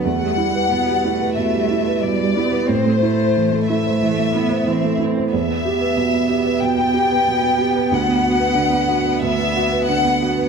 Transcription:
<<
  \new Staff \with { instrumentName = "Violin section" } { \time 4/4 \key e \minor \tempo 4 = 91 fis''2 e''4 d''4 | c''4. e''2 r8 | e''2 g''2 | fis''2 e''4 fis''4 | }
  \new Staff \with { instrumentName = "Felt piano" } { \time 4/4 \key e \minor e,16 g16 e'16 b'16 b,16 g16 e'16 b'16 b,16 g16 e'16 b'16 b,16 g16 e'16 b'16 | a,16 a16 e'16 c''16 e16 a16 e'16 c''16 e16 a16 e'16 c''16 e16 a16 e'16 c''16 | e,16 b16 g'16 b'16 b,16 b16 g'16 b'16 b,16 b16 g'16 b'16 b,16 b16 g'16 b'16 | d,16 b16 fis'16 b'16 d16 b16 fis'16 b'16 d,16 b16 fis'16 b'16 d16 b16 fis'16 b'16 | }
  \new Staff \with { instrumentName = "Cello" } { \time 4/4 \key e \minor a8 g8 b8 a4. g8 b8 | c'8 a4. a8 b8 c'4 | b1~ | b1 | }
>>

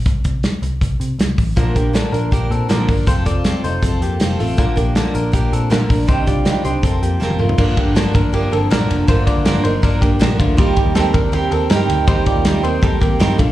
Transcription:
<<
  \new Staff \with { instrumentName = "Clean electric guitar" } { \time 4/4 \key g \minor \tempo 4 = 160 r1 | <bes f'>8 <bes g'>8 <d' a'>8 <d' bes'>8 <bes g'>8 <c' a'>8 <d' bes'>4 | <f' c''>8 <f' d''>4 <ees' c''>8 <c' a'>8 <bes g'>4 <a f'>8 | <bes f'>8 <bes g'>8 <d' a'>8 <d' bes'>8 <bes g'>8 <c' a'>8 <d' bes'>4 |
<ees' c''>8 <f' d''>4 <ees' c''>8 <c' a'>8 <bes g'>4 <a f'>8 | <bes f'>8 <bes g'>8 <d' a'>8 <d' bes'>8 <bes g'>8 <c' a'>8 <d' bes'>4 | <f' c''>8 <f' d''>4 <ees' c''>8 <d' bes'>8 <bes g'>4 <a f'>8 | <bes f'>8 <bes g'>8 <c' a'>8 <d' bes'>8 <bes g'>8 <c' a'>8 <ees' bes'>4 |
<ees' c''>8 <f' d''>4 <ees' c''>8 <c' a'>8 <bes g'>4 <a f'>8 | }
  \new Staff \with { instrumentName = "Steel-string acoustic guitar" } { \time 4/4 \key g \minor r1 | <bes, d f bes d' bes'>8 <f bes d' bes'>8 <bes, d f bes d' bes'>8 <f bes d' bes'>8 <f bes d' bes'>4 <bes, d f bes d' bes'>8 <f bes d' bes'>8 | <f c' f' a'>8 <c' f' a'>8 <f c' f' a'>8 <c' f' a'>8 <f c' f' a'>4 <f c' f' a'>8 <c' f' a'>8 | <bes, d f bes d' bes'>8 <f bes d' bes'>8 <bes, d f bes d' bes'>8 <f bes d' bes'>8 <f bes d' bes'>4 <bes, d f bes d' bes'>8 <f bes d' bes'>8 |
<c ees g c' d' g'>8 <g c' d' g'>8 <c ees g c' d' g'>8 <g c' d' g'>8 <f c' f' bes'>4 <f c' f' bes'>8 <c' f' bes'>8 | <g, d f bes d' bes'>4 <g, d f bes d' bes'>8 <f bes d' bes'>8 <f bes d' bes'>8 <f bes d' bes'>8 <g, d f bes d' bes'>4 | <g, d f bes d' bes'>4 <g, d f bes d' bes'>8 <f bes d' bes'>8 <f bes d' bes'>8 <f bes d' bes'>8 <g, d f bes d' bes'>4 | <ees g c' g' bes'>4 <ees g c' g' bes'>8 <c' g' bes'>8 <g c' g' bes'>8 <c' g' bes'>8 <ees g c' g' bes'>4 |
<ees g c' g' bes'>4 <ees g c' g' bes'>8 <c' g' bes'>8 <g c' g' bes'>8 <c' g' bes'>8 <ees g c' g' bes'>8 <bes, d f bes d' a'>8 | }
  \new Staff \with { instrumentName = "Picked electric bass" } { \clef bass \time 4/4 \key g \minor c,8 c,8. r16 c,8 c,8 c8 c,8 a,,8 | bes,,8 bes,,8. r16 bes,,8 bes,,8 bes,8 bes,,8 g,,8 | f,,8 f,,8. r16 f,,8 f,,8 f,8 f,,8 a,,8 | bes,,8 bes,,8. r16 bes,,8 bes,,8 bes,8 bes,,8 bes,,8 |
c,8 c,8. r16 c,8 f,,8 f,8 f,,8 f,,8 | g,,8 r16 g,,16 g,,8 g,,8 g,,8 g,,8 bes,,8 f,,8 | g,,8 r16 g,,16 g,,8 g,,8 g,,8 g,,8 bes,,8 d,8 | ees,8 r16 ees,16 ees,8 ees,8 ees,8 ees,8 g,8 d,8 |
ees,8 r16 ees,16 ees,8 ees,8 ees,8 ees,8 g,8 bes,,8 | }
  \new DrumStaff \with { instrumentName = "Drums" } \drummode { \time 4/4 <hh bd>8 <hh bd>8 <hh sn>8 hh8 <hh bd>8 hh8 <hh sn>8 <hho bd>8 | <hh bd>8 <hh bd>8 <hh sn>8 hh8 <hh bd>8 hh8 <hh sn>8 <hho bd>8 | <hh bd>8 <hh bd>8 <hh sn>8 hh8 <hh bd>8 hh8 <hh sn>8 hho8 | <hh bd>8 <hh bd>8 <hh sn>8 hh8 <hh bd>8 hh8 <hh sn>8 <hho bd>8 |
<hh bd>8 <hh bd>8 <hh sn>8 hh8 <hh bd>8 hh8 sn16 tommh16 toml16 tomfh16 | <cymc bd>8 <bd cymr>8 <cymr sn>8 <bd cymr>8 cymr8 cymr8 <cymr sn>8 cymr8 | <bd cymr>8 <bd cymr>8 <cymr sn>8 cymr8 <bd cymr>8 <bd cymr>8 <cymr sn>8 <bd cymr>8 | <bd cymr>8 <bd cymr>8 <cymr sn>8 <bd cymr>8 cymr8 cymr8 <cymr sn>8 cymr8 |
<bd cymr>8 <bd cymr>8 <cymr sn>8 cymr8 <bd cymr>8 <bd cymr>8 <cymr sn>8 <bd cymr>8 | }
>>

